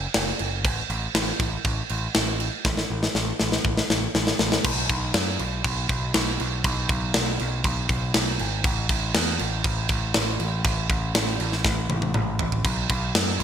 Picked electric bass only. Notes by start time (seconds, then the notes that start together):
0.16 F#1
0.40 F#1
0.64 A1
0.90 A1
1.15 A1
1.40 A1
1.65 A1
1.90 A1
2.16 A1
2.65 A1
2.90 A1
3.15 A1
3.41 A1
3.65 A1
3.90 A1
4.15 A1
4.40 A1
4.64 B1
4.89 B1
5.14 F#2
5.40 B1
5.64 B1
5.89 B1
6.15 B1
6.40 B1
6.64 B1
6.89 B1
7.16 B1
7.41 B1
7.65 B1
7.89 B1
8.15 B1
8.40 G#1
8.64 A1
8.90 A1
9.15 E2
9.41 A1
9.64 A1
9.89 A1
10.16 A1
10.40 A1
10.65 A1
10.90 A1
11.15 A1
11.40 A1
11.65 A1
11.89 A1
12.15 A1
12.40 A1
12.65 B1
12.90 B1
13.15 F#2
13.39 B1